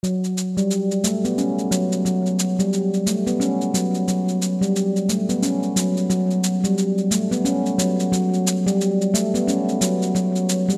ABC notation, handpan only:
X:1
M:4/4
L:1/16
Q:"Swing 16ths" 1/4=89
K:Amix
V:1 name="Handpan" clef=bass
F, z2 G, z2 A, B, C2 F, z F, z2 G, | z2 A, B, C2 F, z F, z2 G, z2 A, B, | C2 F, z F, z2 G, z2 A, B, C2 F, z | F, z2 G, z2 A, B, C2 F, z F, z2 G, |]